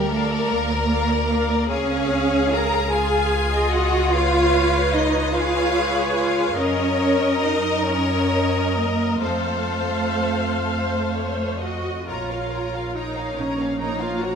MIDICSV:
0, 0, Header, 1, 6, 480
1, 0, Start_track
1, 0, Key_signature, -5, "minor"
1, 0, Tempo, 806452
1, 1015, Time_signature, 6, 3, 24, 8
1, 3424, Tempo, 839161
1, 4384, Tempo, 900901
1, 5344, Tempo, 949367
1, 6784, Tempo, 846262
1, 8072, End_track
2, 0, Start_track
2, 0, Title_t, "Violin section"
2, 0, Program_c, 0, 48
2, 0, Note_on_c, 0, 70, 87
2, 991, Note_off_c, 0, 70, 0
2, 1005, Note_on_c, 0, 68, 77
2, 1723, Note_off_c, 0, 68, 0
2, 1732, Note_on_c, 0, 65, 81
2, 3176, Note_off_c, 0, 65, 0
2, 3177, Note_on_c, 0, 68, 78
2, 3879, Note_off_c, 0, 68, 0
2, 3895, Note_on_c, 0, 70, 87
2, 5322, Note_off_c, 0, 70, 0
2, 5337, Note_on_c, 0, 72, 67
2, 5997, Note_off_c, 0, 72, 0
2, 6056, Note_on_c, 0, 72, 61
2, 6280, Note_off_c, 0, 72, 0
2, 6292, Note_on_c, 0, 73, 60
2, 6539, Note_on_c, 0, 75, 57
2, 6541, Note_off_c, 0, 73, 0
2, 6780, Note_off_c, 0, 75, 0
2, 6787, Note_on_c, 0, 82, 43
2, 6902, Note_off_c, 0, 82, 0
2, 6916, Note_on_c, 0, 77, 37
2, 7037, Note_off_c, 0, 77, 0
2, 7044, Note_on_c, 0, 82, 36
2, 7161, Note_off_c, 0, 82, 0
2, 7165, Note_on_c, 0, 77, 39
2, 7281, Note_off_c, 0, 77, 0
2, 7284, Note_on_c, 0, 82, 38
2, 7391, Note_off_c, 0, 82, 0
2, 7407, Note_on_c, 0, 77, 34
2, 7521, Note_off_c, 0, 77, 0
2, 7527, Note_on_c, 0, 82, 38
2, 7640, Note_off_c, 0, 82, 0
2, 7645, Note_on_c, 0, 77, 38
2, 7757, Note_on_c, 0, 82, 40
2, 7758, Note_off_c, 0, 77, 0
2, 7863, Note_off_c, 0, 82, 0
2, 7870, Note_on_c, 0, 77, 39
2, 7984, Note_on_c, 0, 82, 41
2, 7986, Note_off_c, 0, 77, 0
2, 8072, Note_off_c, 0, 82, 0
2, 8072, End_track
3, 0, Start_track
3, 0, Title_t, "Viola section"
3, 0, Program_c, 1, 48
3, 0, Note_on_c, 1, 70, 47
3, 0, Note_on_c, 1, 74, 45
3, 61, Note_off_c, 1, 74, 0
3, 65, Note_off_c, 1, 70, 0
3, 68, Note_on_c, 1, 74, 53
3, 68, Note_on_c, 1, 77, 50
3, 174, Note_off_c, 1, 74, 0
3, 176, Note_off_c, 1, 77, 0
3, 181, Note_on_c, 1, 74, 51
3, 185, Note_on_c, 1, 70, 53
3, 292, Note_off_c, 1, 74, 0
3, 299, Note_on_c, 1, 74, 54
3, 301, Note_on_c, 1, 77, 53
3, 303, Note_off_c, 1, 70, 0
3, 416, Note_off_c, 1, 74, 0
3, 419, Note_on_c, 1, 70, 53
3, 420, Note_off_c, 1, 77, 0
3, 423, Note_on_c, 1, 74, 50
3, 529, Note_off_c, 1, 74, 0
3, 536, Note_on_c, 1, 74, 56
3, 536, Note_on_c, 1, 77, 55
3, 538, Note_off_c, 1, 70, 0
3, 647, Note_off_c, 1, 74, 0
3, 647, Note_off_c, 1, 77, 0
3, 654, Note_on_c, 1, 70, 52
3, 654, Note_on_c, 1, 74, 48
3, 768, Note_off_c, 1, 74, 0
3, 773, Note_off_c, 1, 70, 0
3, 776, Note_on_c, 1, 74, 54
3, 777, Note_on_c, 1, 77, 55
3, 886, Note_off_c, 1, 74, 0
3, 893, Note_on_c, 1, 74, 55
3, 894, Note_on_c, 1, 70, 53
3, 895, Note_off_c, 1, 77, 0
3, 1014, Note_off_c, 1, 74, 0
3, 1015, Note_off_c, 1, 70, 0
3, 1018, Note_on_c, 1, 68, 70
3, 1018, Note_on_c, 1, 77, 67
3, 1721, Note_off_c, 1, 68, 0
3, 1721, Note_off_c, 1, 77, 0
3, 1742, Note_on_c, 1, 68, 70
3, 1745, Note_on_c, 1, 77, 68
3, 2093, Note_off_c, 1, 68, 0
3, 2095, Note_off_c, 1, 77, 0
3, 2098, Note_on_c, 1, 75, 63
3, 2100, Note_on_c, 1, 68, 61
3, 2450, Note_off_c, 1, 75, 0
3, 2451, Note_off_c, 1, 68, 0
3, 2459, Note_on_c, 1, 71, 74
3, 2461, Note_on_c, 1, 73, 71
3, 3175, Note_off_c, 1, 71, 0
3, 3175, Note_off_c, 1, 73, 0
3, 3182, Note_on_c, 1, 71, 71
3, 3182, Note_on_c, 1, 73, 77
3, 3881, Note_off_c, 1, 71, 0
3, 3881, Note_off_c, 1, 73, 0
3, 3891, Note_on_c, 1, 75, 74
3, 3892, Note_on_c, 1, 70, 71
3, 4602, Note_off_c, 1, 75, 0
3, 4603, Note_off_c, 1, 70, 0
3, 4615, Note_on_c, 1, 70, 63
3, 4617, Note_on_c, 1, 75, 66
3, 5327, Note_off_c, 1, 70, 0
3, 5328, Note_off_c, 1, 75, 0
3, 5345, Note_on_c, 1, 72, 62
3, 5347, Note_on_c, 1, 77, 62
3, 6525, Note_off_c, 1, 72, 0
3, 6546, Note_off_c, 1, 77, 0
3, 6546, Note_on_c, 1, 66, 65
3, 6766, Note_off_c, 1, 66, 0
3, 6784, Note_on_c, 1, 65, 54
3, 7277, Note_off_c, 1, 65, 0
3, 7278, Note_on_c, 1, 63, 56
3, 7516, Note_off_c, 1, 63, 0
3, 7517, Note_on_c, 1, 61, 53
3, 7751, Note_on_c, 1, 63, 54
3, 7753, Note_off_c, 1, 61, 0
3, 7866, Note_off_c, 1, 63, 0
3, 7871, Note_on_c, 1, 65, 56
3, 7986, Note_off_c, 1, 65, 0
3, 7990, Note_on_c, 1, 66, 62
3, 8072, Note_off_c, 1, 66, 0
3, 8072, End_track
4, 0, Start_track
4, 0, Title_t, "Violin section"
4, 0, Program_c, 2, 48
4, 62, Note_on_c, 2, 69, 64
4, 301, Note_off_c, 2, 69, 0
4, 303, Note_on_c, 2, 70, 85
4, 1009, Note_on_c, 2, 73, 83
4, 1016, Note_off_c, 2, 70, 0
4, 1492, Note_off_c, 2, 73, 0
4, 1504, Note_on_c, 2, 82, 85
4, 1736, Note_on_c, 2, 80, 77
4, 1743, Note_off_c, 2, 82, 0
4, 2213, Note_on_c, 2, 78, 77
4, 2217, Note_off_c, 2, 80, 0
4, 2454, Note_off_c, 2, 78, 0
4, 2457, Note_on_c, 2, 77, 86
4, 2931, Note_off_c, 2, 77, 0
4, 2937, Note_on_c, 2, 75, 75
4, 3179, Note_off_c, 2, 75, 0
4, 3181, Note_on_c, 2, 77, 87
4, 3646, Note_off_c, 2, 77, 0
4, 3653, Note_on_c, 2, 77, 71
4, 3888, Note_off_c, 2, 77, 0
4, 3891, Note_on_c, 2, 73, 85
4, 4378, Note_on_c, 2, 75, 76
4, 4381, Note_off_c, 2, 73, 0
4, 4608, Note_on_c, 2, 73, 77
4, 4616, Note_off_c, 2, 75, 0
4, 5091, Note_off_c, 2, 73, 0
4, 5092, Note_on_c, 2, 70, 62
4, 5339, Note_on_c, 2, 69, 64
4, 5341, Note_off_c, 2, 70, 0
4, 6522, Note_off_c, 2, 69, 0
4, 6779, Note_on_c, 2, 70, 43
4, 6779, Note_on_c, 2, 73, 41
4, 6898, Note_off_c, 2, 70, 0
4, 6898, Note_off_c, 2, 73, 0
4, 6907, Note_on_c, 2, 73, 35
4, 6909, Note_on_c, 2, 70, 38
4, 7026, Note_off_c, 2, 73, 0
4, 7027, Note_off_c, 2, 70, 0
4, 7033, Note_on_c, 2, 73, 41
4, 7034, Note_on_c, 2, 70, 36
4, 7145, Note_off_c, 2, 73, 0
4, 7148, Note_off_c, 2, 70, 0
4, 7152, Note_on_c, 2, 73, 37
4, 7154, Note_on_c, 2, 70, 34
4, 7265, Note_off_c, 2, 73, 0
4, 7269, Note_off_c, 2, 70, 0
4, 7272, Note_on_c, 2, 73, 38
4, 7276, Note_on_c, 2, 70, 38
4, 7385, Note_off_c, 2, 73, 0
4, 7387, Note_off_c, 2, 70, 0
4, 7400, Note_on_c, 2, 73, 38
4, 7401, Note_on_c, 2, 70, 37
4, 7510, Note_off_c, 2, 70, 0
4, 7510, Note_off_c, 2, 73, 0
4, 7517, Note_on_c, 2, 70, 39
4, 7517, Note_on_c, 2, 73, 43
4, 7633, Note_off_c, 2, 73, 0
4, 7635, Note_off_c, 2, 70, 0
4, 7640, Note_on_c, 2, 73, 37
4, 7641, Note_on_c, 2, 70, 36
4, 7755, Note_off_c, 2, 70, 0
4, 7755, Note_off_c, 2, 73, 0
4, 7763, Note_on_c, 2, 70, 36
4, 7763, Note_on_c, 2, 73, 38
4, 7867, Note_off_c, 2, 70, 0
4, 7867, Note_off_c, 2, 73, 0
4, 7878, Note_on_c, 2, 70, 37
4, 7879, Note_on_c, 2, 73, 39
4, 7990, Note_off_c, 2, 70, 0
4, 7990, Note_off_c, 2, 73, 0
4, 8001, Note_on_c, 2, 73, 41
4, 8002, Note_on_c, 2, 70, 37
4, 8072, Note_off_c, 2, 70, 0
4, 8072, Note_off_c, 2, 73, 0
4, 8072, End_track
5, 0, Start_track
5, 0, Title_t, "Cello section"
5, 0, Program_c, 3, 48
5, 55, Note_on_c, 3, 57, 65
5, 297, Note_off_c, 3, 57, 0
5, 297, Note_on_c, 3, 58, 77
5, 1008, Note_on_c, 3, 61, 89
5, 1012, Note_off_c, 3, 58, 0
5, 1501, Note_off_c, 3, 61, 0
5, 1504, Note_on_c, 3, 70, 93
5, 1737, Note_on_c, 3, 68, 80
5, 1742, Note_off_c, 3, 70, 0
5, 2217, Note_off_c, 3, 68, 0
5, 2222, Note_on_c, 3, 66, 92
5, 2453, Note_on_c, 3, 65, 98
5, 2455, Note_off_c, 3, 66, 0
5, 2938, Note_off_c, 3, 65, 0
5, 2938, Note_on_c, 3, 63, 89
5, 3175, Note_on_c, 3, 65, 88
5, 3180, Note_off_c, 3, 63, 0
5, 3648, Note_off_c, 3, 65, 0
5, 3655, Note_on_c, 3, 65, 90
5, 3889, Note_off_c, 3, 65, 0
5, 3894, Note_on_c, 3, 61, 89
5, 4372, Note_off_c, 3, 61, 0
5, 4383, Note_on_c, 3, 63, 78
5, 4618, Note_off_c, 3, 63, 0
5, 4619, Note_on_c, 3, 61, 76
5, 5094, Note_on_c, 3, 58, 71
5, 5096, Note_off_c, 3, 61, 0
5, 5342, Note_off_c, 3, 58, 0
5, 5342, Note_on_c, 3, 57, 75
5, 6523, Note_off_c, 3, 57, 0
5, 7517, Note_on_c, 3, 58, 52
5, 8072, Note_off_c, 3, 58, 0
5, 8072, End_track
6, 0, Start_track
6, 0, Title_t, "Double bass section"
6, 0, Program_c, 4, 48
6, 0, Note_on_c, 4, 38, 64
6, 213, Note_off_c, 4, 38, 0
6, 297, Note_on_c, 4, 38, 63
6, 927, Note_off_c, 4, 38, 0
6, 1012, Note_on_c, 4, 37, 65
6, 3871, Note_off_c, 4, 37, 0
6, 3893, Note_on_c, 4, 42, 63
6, 5321, Note_off_c, 4, 42, 0
6, 5343, Note_on_c, 4, 41, 54
6, 6653, Note_off_c, 4, 41, 0
6, 6777, Note_on_c, 4, 34, 46
6, 7427, Note_off_c, 4, 34, 0
6, 7516, Note_on_c, 4, 34, 50
6, 8072, Note_off_c, 4, 34, 0
6, 8072, End_track
0, 0, End_of_file